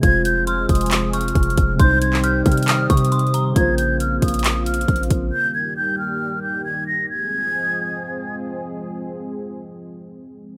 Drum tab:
HH |x-----------x-----------x-----------x--x--x--x--x-----------x---x---x---x---x---x---x-----------|x-----------x-----------x-----------x--x--x--x--x-----------x---x---x---x---x---x---x-----------|x-----------x-----------x-----------x--x--x--x--x-----------x---x---x---x---x---x---x-----------|------------------------------------------------------------------------------------------------|
CP |------------------------------------------------x-----------------------------------------------|------------------x-----------------------------x-----------------------------------------------|------------------------------------------------x-----------------------------------------------|------------------------------------------------------------------------------------------------|
BD |o-----------------------------------o-----------------------------------o-----------o-----------|o-----------------------------------o-----------------------o-----------------------------------|o-----------------------------------o-----------------------------------o-----------o-----------|------------------------------------------------------------------------------------------------|

HH |------------------------------------------------------------------------------------------------|------------------------------------------------------------------------------------------------|
CP |------------------------------------------------------------------------------------------------|------------------------------------------------------------------------------------------------|
BD |------------------------------------------------------------------------------------------------|------------------------------------------------------------------------------------------------|